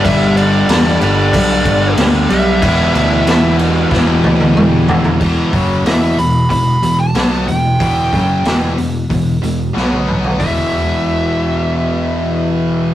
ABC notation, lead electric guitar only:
X:1
M:4/4
L:1/16
Q:1/4=92
K:Em
V:1 name="Lead electric guitar"
e2 d4 d6 z2 e2- | e6 z8 z2 | z4 e2 b2 b3 a3 g2- | g6 z8 z2 |
e16 |]